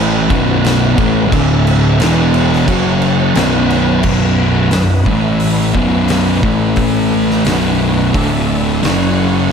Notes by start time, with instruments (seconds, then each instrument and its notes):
Already playing: picked electric bass A1, distorted electric guitar A2 E3 A3, tonewheel organ A3 E4 B4
0.29 picked electric bass B0, distorted electric guitar B1 F#2 B2, tonewheel organ B3 F#4, kick, crash
0.64 snare, crash
0.97 picked electric bass A1, distorted electric guitar A2 E3 A3, kick, crash
1.29 picked electric bass D1, distorted electric guitar D2 A2 D3, tonewheel organ D4 A4 E5, kick
1.33 crash
1.67 crash
1.98 picked electric bass E1, distorted electric guitar E2 B2 E3, tonewheel organ E4 B4 F#5, snare, crash
2.34 crash
2.53 snare
2.66 picked electric bass F#1, distorted electric guitar F#2 C#3 F#3, tonewheel organ F#4 C#5 F#5, kick, crash
3.02 crash
3.35 picked electric bass B0, distorted electric guitar B1 F#2 B2, tonewheel organ B3 B4, snare, crash
3.70 crash
4.03 picked electric bass B0, distorted electric guitar B1 F#2 B2, tonewheel organ B3 F#4 B4, kick, crash
4.71 picked electric bass B0, distorted electric guitar B1 F#2, snare, open hi-hat
5.06 picked electric bass A1, distorted electric guitar A2 E3 A3, tonewheel organ A3 E4, kick
5.40 open hi-hat
5.74 picked electric bass B0, distorted electric guitar B1 F#2 B2, tonewheel organ B3 F#4, kick
6.08 snare, open hi-hat
6.43 picked electric bass A1, distorted electric guitar A2 E3 A3, tonewheel organ A3 E4, kick
6.76 kick, open hi-hat
7.30 snare
7.45 picked electric bass B0, distorted electric guitar B1 F#2 B2, tonewheel organ B3 F#4, snare, open hi-hat
8.13 picked electric bass D1, distorted electric guitar D2 A2 D3, tonewheel organ D4 A4 E5, kick, open hi-hat
8.83 picked electric bass F#1, distorted electric guitar F#2 C#3 F#3, tonewheel organ F#4 C#5 F#5, snare, open hi-hat